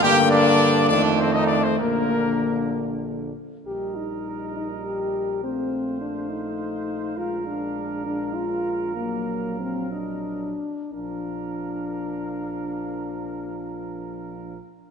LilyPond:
<<
  \new Staff \with { instrumentName = "Trumpet" } { \time 6/8 \key bes \major \tempo 4. = 65 g''8 d''4 d''8 c''16 ees''16 d''16 c''16 | bes'4. r4. | ees''2. | f''2.~ |
f''2.~ | f''4. ees''4 r8 | f''2.~ | f''2. | }
  \new Staff \with { instrumentName = "Trumpet" } { \time 6/8 \key bes \major g'8 d'4 d'8 c'16 ees'16 d'16 c'16 | bes4. r4. | bes'2. | c''2. |
bes'2.~ | bes'2~ bes'8 r8 | bes'2.~ | bes'2. | }
  \new Staff \with { instrumentName = "French horn" } { \time 6/8 \key bes \major bes4. a4. | bes2~ bes8 r8 | g'8 ees'4 ees'8 g'4 | c'4 d'8 ees'4. |
f'8 d'4 d'8 f'4 | bes4 c'8 d'4. | d'2.~ | d'2. | }
  \new Staff \with { instrumentName = "Euphonium" } { \clef bass \time 6/8 \key bes \major d4. ees4. | d2~ d8 r8 | g2. | a2. |
aes2. | ges2~ ges8 r8 | f2.~ | f2. | }
  \new Staff \with { instrumentName = "Bass trombone" } { \clef bass \time 6/8 \key bes \major g,4. f,4. | bes,,2~ bes,,8 r8 | bes,,2.~ | bes,,2. |
bes,,2.~ | bes,,2~ bes,,8 r8 | bes,,2.~ | bes,,2. | }
>>